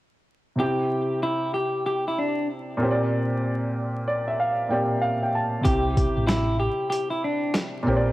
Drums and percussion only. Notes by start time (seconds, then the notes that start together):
5.65 kick, closed hi-hat
5.97 kick, closed hi-hat
6.28 snare, closed hi-hat
6.92 closed hi-hat
7.54 snare, closed hi-hat